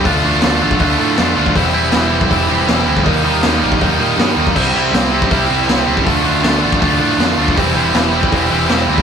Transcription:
<<
  \new Staff \with { instrumentName = "Distorted electric guitar" } { \time 4/4 \key c \major \tempo 4 = 160 <d a d' f'>8 <d a d' f'>8 <d a d' f'>8 <d a d' f'>8 <d a d' f'>8 <d a d' f'>8 <d a d' f'>8 <d a d' f'>8 | <e g c' e'>8 <e g c' e'>8 <e g c' e'>8 <e g c' e'>8 <e g c' e'>8 <e g c' e'>8 <e g c' e'>8 <e g c' e'>8 | <ees g bes ees'>8 <ees g bes ees'>8 <ees g bes ees'>8 <ees g bes ees'>8 <ees g bes ees'>8 <ees g bes ees'>8 <ees g bes ees'>8 <ees g bes ees'>8 | <c g c' e'>8 <c g c' e'>8 <c g c' e'>8 <c g c' e'>8 <c g c' e'>8 <c g c' e'>8 <c g c' e'>8 <c g c' e'>8 |
<d a d' f'>8 <d a d' f'>8 <d a d' f'>8 <d a d' f'>8 <d a d' f'>8 <d a d' f'>8 <d a d' f'>8 <d a d' f'>8 | <e g c' e'>8 <e g c' e'>8 <e g c' e'>8 <e g c' e'>8 <e g c' e'>8 <e g c' e'>8 <e g c' e'>8 <e g c' e'>8 | }
  \new Staff \with { instrumentName = "Distorted electric guitar" } { \time 4/4 \key c \major <d a d' f'>8 <d a d' f'>8 <d a d' f'>8 <d a d' f'>8 <d a d' f'>8 <d a d' f'>8 <d a d' f'>8 <d a d' f'>8 | <e g c' e'>8 <e g c' e'>8 <e g c' e'>8 <e g c' e'>8 <e g c' e'>8 <e g c' e'>8 <e g c' e'>8 <e g c' e'>8 | <ees g bes ees'>8 <ees g bes ees'>8 <ees g bes ees'>8 <ees g bes ees'>8 <ees g bes ees'>8 <ees g bes ees'>8 <ees g bes ees'>8 <ees g bes ees'>8 | <c g c' e'>8 <c g c' e'>8 <c g c' e'>8 <c g c' e'>8 <c g c' e'>8 <c g c' e'>8 <c g c' e'>8 <c g c' e'>8 |
<d a d' f'>8 <d a d' f'>8 <d a d' f'>8 <d a d' f'>8 <d a d' f'>8 <d a d' f'>8 <d a d' f'>8 <d a d' f'>8 | <e g c' e'>8 <e g c' e'>8 <e g c' e'>8 <e g c' e'>8 <e g c' e'>8 <e g c' e'>8 <e g c' e'>8 <e g c' e'>8 | }
  \new Staff \with { instrumentName = "Picked electric bass" } { \clef bass \time 4/4 \key c \major d,8 d,8 d,8 a,,8 d,8 a,8 f,8 d,8 | e,,8 e,,8 e,,4 e,,8 e,,8 e,,8 d,8 | ees,8 ees,8 ees,8 bes,,8 ees,8 bes,8 g,8 ees,8 | c,8 c,8 c,4 c,8 c,8 c,8 des,8 |
d,8 d,8 d,8 a,,8 d,8 a,8 f,8 d,8 | e,,8 e,,8 e,,4 e,,8 e,,8 e,,8 d,8 | }
  \new DrumStaff \with { instrumentName = "Drums" } \drummode { \time 4/4 <hho bd>4 <hho sn>8. bd16 <hho bd>4 <hho sn>8. bd16 | <hho bd>4 <hho sn>8. bd16 <hho bd>4 <hho sn>8. bd16 | <hho bd>4 <hho sn>8. bd16 <hho bd>4 <hho sn>8. bd16 | <cymc bd>4 <hho sn>8. bd16 <hho bd>4 <hho sn>8. bd16 |
<hho bd>4 <hho sn>8. bd16 <hho bd>4 <hho sn>8. bd16 | <hho bd>4 <hho sn>8. bd16 <hho bd>4 <hho sn>8. bd16 | }
>>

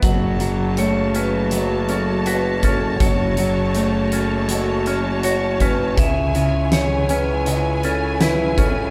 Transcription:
<<
  \new Staff \with { instrumentName = "String section" } { \time 4/4 \key fis \minor \tempo 4 = 81 << { <fis' a''>1~ | <fis' a''>1 | <e' gis''>1 | } \\ { cis''1~ | cis''1~ | cis''1 | } >> }
  \new Staff \with { instrumentName = "Vibraphone" } { \time 4/4 \key fis \minor fis''4 cis''8 b'4 a'8 b'8 a'8 | cis''8 cis''4 a'4 r8 cis''8 b'8 | e''4 cis''8 b'4 a'8 b'8 a'8 | }
  \new Staff \with { instrumentName = "Clean electric guitar" } { \time 4/4 \key fis \minor fis8 fis8 a8 cis'8 fis8 cis'8 fis'8 cis'8 | fis8 fis8 a8 cis'8 fis8 cis'8 fis'8 cis'8 | cis8 cis4 cis'8 cis8 cis'8 e'8 cis'8 | }
  \new Staff \with { instrumentName = "Fingered electric bass" } { \clef bass \time 4/4 \key fis \minor fis,,1 | fis,,1 | cis,1 | }
  \new DrumStaff \with { instrumentName = "Drums" } \drummode { \time 4/4 <hh bd>8 hh8 hh8 hh8 hh8 hh8 hh8 <hh bd>8 | <hh bd>8 hh8 hh8 hh8 hh8 hh8 hh8 <hh bd>8 | <hh bd>8 hh8 <hh sn>8 hh8 hh8 hh8 <hh sn>8 <hh bd>8 | }
>>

